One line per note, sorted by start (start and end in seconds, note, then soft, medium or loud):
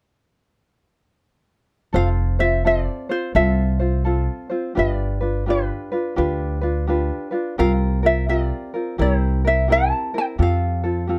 1.93 2.86 F1 medium
1.93 2.39 C4 medium
1.93 2.39 F4 medium
1.93 2.39 A4 medium
1.93 2.38 C5 medium
1.93 2.08 F5 medium
2.39 2.64 C4 soft
2.39 2.64 F4 soft
2.39 2.65 C5 soft
2.39 2.66 E5 medium
2.65 3.10 C4 medium
2.65 3.09 F4 medium
2.65 3.10 A4 soft
2.65 3.08 C5 medium
2.65 2.85 D#5 medium
2.85 3.11 D5 medium
3.09 3.34 C4 soft
3.09 3.35 F4 soft
3.09 3.35 C5 soft
3.09 3.35 C5 medium
3.35 4.27 C2 medium
3.35 3.80 C4 medium
3.35 3.79 F4 medium
3.35 3.80 A4 medium
3.35 3.78 C5 medium
3.35 4.78 E5 medium
3.80 4.04 C4 soft
3.80 4.05 F4 soft
3.80 4.05 C5 soft
4.05 4.50 C4 medium
4.05 4.50 F4 medium
4.05 4.50 A4 medium
4.05 4.48 C5 medium
4.50 4.75 C4 soft
4.50 4.75 F4 medium
4.50 4.76 C5 soft
4.75 5.69 G1 medium
4.75 5.21 D4 medium
4.75 5.21 F4 medium
4.75 5.21 G4 medium
4.75 5.19 B4 medium
4.75 5.50 D5 medium
5.21 5.46 D4 soft
5.21 5.47 F4 soft
5.21 5.47 B4 medium
5.46 5.92 D4 medium
5.46 5.91 F4 medium
5.46 5.92 G4 medium
5.46 5.90 B4 medium
5.50 7.30 B4 medium
5.92 6.16 D4 soft
5.92 6.16 F4 soft
5.92 6.17 B4 medium
6.16 7.09 D2 medium
6.16 6.62 D4 medium
6.16 6.62 F4 medium
6.16 6.62 G4 medium
6.16 6.60 B4 medium
6.61 6.87 D4 soft
6.61 6.88 F4 soft
6.61 6.88 B4 medium
6.87 7.32 D4 medium
6.87 7.31 F4 medium
6.87 7.32 G4 medium
6.87 7.30 B4 medium
7.31 7.58 D4 soft
7.31 7.58 F4 medium
7.31 7.57 B4 soft
7.58 8.50 C2 medium
7.58 8.03 C4 medium
7.58 8.03 F4 medium
7.58 8.03 G4 medium
7.58 8.02 A#4 medium
7.58 7.72 F5 medium
8.03 8.28 C4 soft
8.03 8.29 F4 soft
8.03 8.29 A#4 medium
8.03 8.29 E5 medium
8.28 8.74 C4 medium
8.28 8.74 F4 medium
8.28 8.73 G4 medium
8.28 8.72 A#4 medium
8.28 9.01 D5 medium
8.74 8.98 C4 soft
8.74 8.99 F4 soft
8.74 8.98 A#4 soft
8.98 9.91 C2 medium
8.98 9.44 C4 medium
8.98 9.44 E4 medium
8.98 9.43 G4 medium
8.98 9.43 A#4 medium
8.98 9.19 C#5 medium
9.19 9.46 C5 medium
9.45 9.67 C4 soft
9.45 9.69 E4 soft
9.45 9.69 A#4 soft
9.45 9.72 E5 medium
9.68 10.14 C4 medium
9.68 10.13 E4 medium
9.68 10.13 G4 medium
9.68 10.13 A#4 medium
9.72 10.17 A5 medium
10.14 10.38 C4 soft
10.14 10.39 E4 soft
10.14 10.39 A#4 medium
10.18 10.24 G5 medium
10.38 11.19 F2 medium
10.38 10.84 C4 medium
10.38 10.83 F4 medium
10.38 10.84 G4 medium
10.38 10.82 A4 medium
10.42 11.19 F5 medium
10.84 11.08 C4 soft
10.84 11.08 F4 soft
10.84 11.08 A4 medium
11.07 11.19 C4 medium
11.07 11.19 F4 medium
11.07 11.19 G4 soft
11.07 11.19 A4 medium